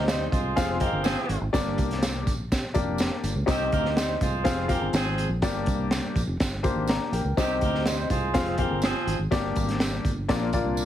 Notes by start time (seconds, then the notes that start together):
Already playing: D2 C3 C4 D#4 G4 D#5
0.07 G3 D#4 C5, snare, closed hi-hat, tambourine
0.30 C2 G#3 F4 C5, kick, closed hi-hat, tambourine
0.56 F1 C4 F4 G#4 F5, kick, snare, closed hi-hat, tambourine
0.79 A#3 C4 F4 G4 G#4 A#4 D#5, kick, closed hi-hat, tambourine
0.86 F5
0.93 G1
1.04 F3 C4 G#4, snare, closed hi-hat, tambourine
1.29 G#1, closed hi-hat, tambourine
1.41 G#1
1.53 G1 G2 A#3 D4 G4 D5, kick, snare, closed hi-hat, tambourine
1.78 C2, kick, closed hi-hat, tambourine
1.91 snare, closed hi-hat
2.03 snare, closed hi-hat, tambourine
2.27 A#1, kick, closed hi-hat, tambourine
2.52 kick, snare, closed hi-hat, tambourine
2.74 F1 A#3 D4 G4 D5, kick, closed hi-hat, tambourine
2.98 snare, closed hi-hat, tambourine
3.23 G1, closed hi-hat, tambourine
3.36 C#2
3.46 C2 C3 D#3 C4 D#4 G4 D#5, kick, snare, closed hi-hat, tambourine
3.71 D2 A#3 G4 A#4, kick, closed hi-hat, tambourine
3.85 snare
3.96 G3 D#4 C5, snare, closed hi-hat, tambourine
4.21 C2 G#3 F4 C5, kick, closed hi-hat, tambourine
4.44 F1 C4 F4 G#4 F5, kick, snare, closed hi-hat, tambourine
4.68 A#3 C4 F4 G4 A#4 F5, kick, closed hi-hat, tambourine
4.74 G#4
4.81 G1
4.93 G#1 F3 C4 G#4, snare, closed hi-hat, tambourine
5.18 closed hi-hat, tambourine
5.29 A#1
5.42 G1 G2 A#3 D4 G4 D5, kick, snare, closed hi-hat, tambourine
5.66 C2, kick, closed hi-hat, tambourine
5.91 snare, closed hi-hat, tambourine
6.16 A#1, kick, closed hi-hat, tambourine
6.27 F1
6.40 G1, kick, snare, closed hi-hat, tambourine
6.63 A#3 D4 G4 C5, kick, closed hi-hat, tambourine
6.75 G#1
6.87 D5 A#5, snare, closed hi-hat, tambourine
7.12 A#1 A#4 G5, closed hi-hat, tambourine
7.24 C#2
7.37 C2 C3 D#3 C4 D#4 G4 D#5, kick, snare, closed hi-hat, tambourine
7.61 D2 A#3 G4 A#4, kick, closed hi-hat, tambourine
7.75 snare
7.85 G3 D#4 C5, snare, closed hi-hat, tambourine
8.09 C2 G#3 F4 C5, kick, closed hi-hat, tambourine
8.34 F1 C4 F4 G#4 F5, kick, snare, closed hi-hat, tambourine
8.46 closed hi-hat
8.58 A#3 C4 F4 G4 G#4 A#4 F5, kick, closed hi-hat, tambourine
8.71 G1
8.82 F3 C4 G#4, snare, closed hi-hat, tambourine
9.07 G#1, closed hi-hat, tambourine
9.19 G#1
9.31 G1 G2 A#3 D4 G4 D5, kick, snare, closed hi-hat, tambourine
9.56 G#1, kick, closed hi-hat, tambourine
9.68 snare, closed hi-hat
9.80 snare, closed hi-hat, tambourine
10.05 G1, kick, closed hi-hat, tambourine
10.28 A#1 A#2 A#3 D4 F4 D5, kick, snare, closed hi-hat, tambourine
10.53 A#3 D4 F4 D5, kick, closed hi-hat, tambourine
10.65 C2
10.77 tambourine